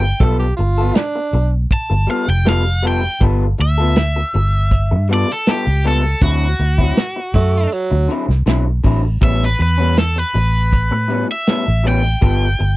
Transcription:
Already playing: G1 G5
0.03 muted clean electric guitar stroke
0.20 B1 G3 B3 F4 A4, kick, closed hi-hat
0.39 G4
0.57 G1 F4, muted clean electric guitar stroke, closed hi-hat
0.78 B3 F4 A4
0.95 D4, muted clean electric guitar stroke, snare, closed hi-hat
1.15 muted clean electric guitar stroke
1.33 B1, muted clean electric guitar stroke, closed hi-hat
1.71 A5, kick, closed hi-hat
1.90 G1, muted clean electric guitar stroke
2.07 G3 B3 F4 A4 F5, closed hi-hat
2.28 F1 G5
2.45 G3 B3 F4 A4 F5, snare, closed hi-hat
2.65 muted clean electric guitar stroke
2.83 G3 B3 F4 A4, open hi-hat
2.88 G5
3.03 muted clean electric guitar stroke
3.20 G1 G3 B3 F4 A4, kick, closed hi-hat
3.58 D2 E5, muted clean electric guitar stroke, closed hi-hat
3.78 B3 F4 A4
3.96 muted clean electric guitar stroke, snare, closed hi-hat
4.16 muted clean electric guitar stroke
4.34 G1, muted clean electric guitar stroke, closed hi-hat
4.71 kick, closed hi-hat
4.91 G2, muted clean electric guitar stroke
5.09 G3 B3 F4 A4, closed hi-hat
5.14 D5
5.29 A4, muted clean electric guitar stroke
5.46 G3 B3 F4 A4, snare, closed hi-hat
5.51 G4
5.67 C#2, muted clean electric guitar stroke
5.84 G3 B3 F4 A4, open hi-hat
6.04 muted clean electric guitar stroke
6.21 D2 D3 F#3 C4 E4 F#4, kick, closed hi-hat
6.59 D2, muted clean electric guitar stroke, closed hi-hat
6.78 F#3 C4 E4, kick
6.96 snare, closed hi-hat
7.16 muted clean electric guitar stroke
7.34 F#2 A3, muted clean electric guitar stroke, kick, closed hi-hat
7.72 F#3, closed hi-hat
7.91 D2, muted clean electric guitar stroke
8.08 D3 F#3 C4 E4, closed hi-hat
8.28 C2, muted clean electric guitar stroke, snare
8.46 B1 D3 F#3 C4 E4, snare, closed hi-hat
8.66 muted clean electric guitar stroke
8.84 A1 D3 F#3 C4 E4, kick, open hi-hat
9.04 muted clean electric guitar stroke
9.21 A1 A2 G3 B3 C#4 E5, kick, closed hi-hat
9.45 B4
9.59 E2 B4, muted clean electric guitar stroke, closed hi-hat
9.78 G3 B3 C#4
9.97 A4, muted clean electric guitar stroke, snare, closed hi-hat
10.16 B4, muted clean electric guitar stroke
10.34 A1, muted clean electric guitar stroke, closed hi-hat
10.73 kick, closed hi-hat
10.91 A2, muted clean electric guitar stroke
11.08 A2 G3 B3 C#4, closed hi-hat
11.29 E5, muted clean electric guitar stroke
11.47 A2 G3 B3 C#4, snare, closed hi-hat
11.67 A1, muted clean electric guitar stroke
11.84 A2 G3 B3 C#4, open hi-hat
11.88 G5
12.04 muted clean electric guitar stroke
12.21 G1 G3 B3 F4 A4, kick, closed hi-hat
12.59 G1, muted clean electric guitar stroke, closed hi-hat

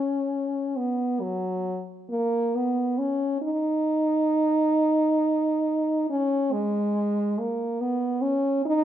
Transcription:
Already playing: C#4
0.77 B3
1.20 F#3
2.10 A#3
2.55 B3
2.98 C#4
3.42 D#4
6.09 C#4
6.52 G#3
7.38 A#3
7.81 B3
8.22 C#4
8.65 D#4

